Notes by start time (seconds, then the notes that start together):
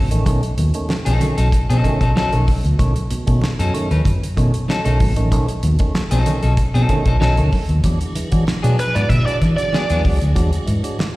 0.11 A1 D#3 A3 C#4, closed hi-hat
0.26 B1 D#3 A3 C#4, kick, closed hi-hat, muted conga
0.43 closed hi-hat
0.58 D#2 B2, closed hi-hat, muted conga
0.74 D#3 A3 C#4, closed hi-hat
0.89 A3 C#4, snare, high conga
1.05 B1 B2 F#3 C#4 D#4 A4, closed hi-hat
1.21 D#3 A3 C#4, closed hi-hat, muted conga, low conga
1.38 B1 F#3 C#4 D#4 A4, closed hi-hat
1.52 muted fingered electric bass stroke, kick, closed hi-hat
1.70 B2 F#3 C#4 D#4 A4, closed hi-hat
1.84 D#3 A3 C#4, kick, closed hi-hat, muted conga, low conga
2.01 B1 F#3 C#4 D#4 A4, kick, closed hi-hat
2.16 F#3 C#4 D#4 A4, snare, high conga
2.32 B1 D#3 A3 C#4, closed hi-hat
2.47 kick, open hi-hat, high conga
2.64 D2 B2, closed hi-hat
2.79 B1 D#3 A3 C#4, kick, closed hi-hat, muted conga
2.96 closed hi-hat
3.10 B2, muted fingered electric bass stroke, closed hi-hat, muted conga
3.27 B2 D#3 A3 C#4, kick, closed hi-hat
3.42 A3 C#4, muted fingered electric bass stroke, snare, high conga
3.59 F#2 B2 F#3 C#4 D#4 A4, closed hi-hat
3.74 D#3 A3 C#4, closed hi-hat
3.91 D#2 F#3 C#4 D#4 B4, closed hi-hat
4.05 F#2, kick, closed hi-hat, low conga
4.23 closed hi-hat
4.37 B2 D#3 A3 C#4, kick, closed hi-hat, muted conga
4.54 closed hi-hat
4.68 F#3 C#4 D#4 A4, snare, high conga
4.85 B1 D#3 F#3 A3 C#4 D#4 A4, closed hi-hat
5.00 G#1 B2, kick, open hi-hat, high conga
5.16 A1 D#3 A3 C#4, closed hi-hat
5.31 B1 D#3 A3 C#4, kick, closed hi-hat, muted conga
5.48 closed hi-hat
5.63 D#2 B2, closed hi-hat, muted conga
5.79 D#3 A3 C#4, kick, closed hi-hat
5.95 A3 C#4, snare, high conga
6.11 B1 B2 F#3 C#4 D#4 A4, closed hi-hat
6.26 D#3 A3 C#4, closed hi-hat, low conga
6.43 B1 F#3 C#4 D#4 A4, closed hi-hat
6.57 muted fingered electric bass stroke, kick, closed hi-hat
6.74 B2 F#3 C#4 D#4 A4, closed hi-hat
6.89 D#3 A3 C#4, kick, closed hi-hat, muted conga, low conga
7.05 B1 F#3 C#4 D#4 A4, kick, closed hi-hat
7.20 B1 F#3 C#4 D#4 A4, snare, high conga
7.37 D2 D#3 A3 C#4, closed hi-hat
7.52 kick, open hi-hat, high conga
7.69 D#2 B2, closed hi-hat
7.83 E2 F#3 G#3 D4 E4 G#4, kick, closed hi-hat, muted conga
8.01 closed hi-hat
8.15 E3, muted fingered electric bass stroke, closed hi-hat, muted conga
8.32 E3 F#3 G#3 D4, kick, closed hi-hat
8.47 muted fingered electric bass stroke, snare, high conga
8.63 B2 F#3 G#3 B3 D4 G#4, closed hi-hat
8.79 B4, closed hi-hat
8.95 G#2 E3 F#3 B3 D4 B4 D5, closed hi-hat
9.09 B2 E5, kick, closed hi-hat, low conga
9.26 F#3 G#3 D4 D5, closed hi-hat
9.41 E3, kick, snare, closed hi-hat, muted conga
9.57 F#3 G#3 D4 D5, closed hi-hat
9.72 F#3 G#3 B3 D4 G#4, snare, high conga
9.90 E2 E3 F#3 B3 D4 G#4, closed hi-hat
10.04 C#2 F#3 G#3 D4, kick, open hi-hat, high conga
10.21 D2, closed hi-hat, high conga
10.35 E2 F#3 G#3 D4 F#4, kick, closed hi-hat, muted conga
10.53 closed hi-hat
10.67 G#2 E3, closed hi-hat, muted conga
10.84 F#3 G#3 D4, closed hi-hat
10.99 snare, high conga